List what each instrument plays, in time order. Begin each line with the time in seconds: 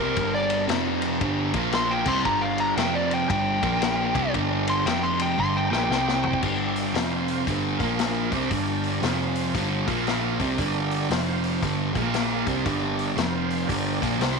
Already playing: picked electric bass C2, distorted electric guitar C3 G3, tonewheel organ A#3 D4 G4 A#4, electric slide guitar A#4
0.00 distorted electric guitar C4
0.16 picked electric bass G1, distorted electric guitar G2 D3 G3, kick, ride
0.35 electric slide guitar D5
0.50 ride
0.67 picked electric bass F1, distorted electric guitar F2 C3 F3, tonewheel organ F3 C4 F4 C5, snare, ride
1.02 ride
1.21 picked electric bass G1, distorted electric guitar G2 D3 G3, kick, ride
1.54 picked electric bass A#1, distorted electric guitar A#2 F3 A#3, tonewheel organ A#3 F4 A#4 F5, kick, ride
1.72 electric slide guitar C6, snare, ride
1.91 electric slide guitar G5
2.06 picked electric bass C2, distorted electric guitar C3 G3 C4, tonewheel organ D4 G4 A#4 D5, electric slide guitar C6, kick, crash
2.25 picked electric bass G1, distorted electric guitar G2 D3 G3, electric slide guitar A#5, kick
2.42 electric slide guitar F5
2.58 electric slide guitar A#5, ride
2.76 picked electric bass F1, distorted electric guitar F2 C3 F3, tonewheel organ C4 F4 C5 F5, electric slide guitar G5, snare, ride
2.95 electric slide guitar D5
3.11 electric slide guitar G5, ride
3.29 picked electric bass G1, distorted electric guitar G2 D3 G3, electric slide guitar G5, kick, ride
3.62 picked electric bass A#1, distorted electric guitar A#2 F3 A#3, tonewheel organ A#3 F4 A#4 F5, kick, ride
3.82 snare, ride
4.15 picked electric bass C2, distorted electric guitar C3 G3 C4, tonewheel organ D4 G4 A#4 D5, kick, ride
4.33 picked electric bass G1, distorted electric guitar G2 D3 G3, kick, ride
4.68 electric slide guitar C6, ride
4.86 picked electric bass F1, distorted electric guitar F2 C3 F3, tonewheel organ C4 F4 C5 F5, electric slide guitar G5, snare, ride
5.03 electric slide guitar C6
5.20 electric slide guitar G5, ride
5.38 picked electric bass G1, distorted electric guitar G2 D3 G3, tonewheel organ D4 G4 A#4 D5, electric slide guitar C6, kick
5.57 electric slide guitar G5
5.70 picked electric bass A#1, distorted electric guitar A#2 F3 A#3, electric slide guitar G5, snare
5.90 picked electric bass C2, distorted electric guitar C3 G3 C4, tonewheel organ C4 G4 C5 G5, snare
6.08 snare
6.23 floor tom
6.33 kick
6.42 picked electric bass G1, distorted electric guitar G2 D3 G3, tonewheel organ D4 G4 A#4 D5, kick, crash
6.76 open hi-hat
6.94 picked electric bass F1, distorted electric guitar F2 C3 F3, tonewheel organ C4 F4 C5 F5, snare, open hi-hat
7.28 open hi-hat
7.47 picked electric bass G1, distorted electric guitar G2 D3 G3, kick, open hi-hat
7.77 picked electric bass A#1, distorted electric guitar A#2 F3 A#3, tonewheel organ A#3 F4 A#4 F5, kick, open hi-hat
7.99 snare, open hi-hat
8.30 picked electric bass C2, distorted electric guitar C3 G3 C4, tonewheel organ D4 G4 A#4 D5, kick, open hi-hat
8.50 picked electric bass G1, distorted electric guitar G2 D3 G3, kick, open hi-hat
8.84 open hi-hat
9.02 picked electric bass F1, distorted electric guitar F2 C3 F3, tonewheel organ C4 F4 C5 F5, snare, open hi-hat
9.35 open hi-hat
9.54 picked electric bass G1, distorted electric guitar G2 D3 G3, kick, open hi-hat
9.86 picked electric bass A#1, distorted electric guitar A#2 F3 A#3, tonewheel organ A#3 F4 A#4 F5, kick, open hi-hat
10.07 snare, open hi-hat
10.39 picked electric bass C2, distorted electric guitar C3 G3 C4, tonewheel organ D4 G4 A#4 D5, kick, open hi-hat
10.58 picked electric bass G1, distorted electric guitar G2 D3 G3, kick, open hi-hat
10.91 open hi-hat
11.10 picked electric bass F1, distorted electric guitar F2 C3 F3, tonewheel organ C4 F4 C5 F5, snare, open hi-hat
11.44 open hi-hat
11.62 picked electric bass G1, distorted electric guitar G2 D3 G3, kick, open hi-hat
11.94 picked electric bass A#1, distorted electric guitar A#2 F3 A#3, tonewheel organ A#3 F4 A#4 F5, kick, open hi-hat
12.14 snare, open hi-hat
12.46 picked electric bass C2, distorted electric guitar C3 G3 C4, tonewheel organ D4 G4 A#4 D5, kick, open hi-hat
12.65 picked electric bass G1, distorted electric guitar G2 D3 G3, kick, open hi-hat
12.99 open hi-hat
13.15 picked electric bass F1, distorted electric guitar F2 C3 F3, tonewheel organ C4 F4 C5 F5, snare, open hi-hat
13.50 open hi-hat
13.68 picked electric bass G1, distorted electric guitar G2 D3 G3, tonewheel organ D4 G4 A#4 D5, kick, open hi-hat
14.02 picked electric bass A#1, distorted electric guitar A#2 F3 A#3, kick, open hi-hat
14.19 picked electric bass C2, distorted electric guitar C3 G3 C4, tonewheel organ C4 G4 C5 G5, snare, open hi-hat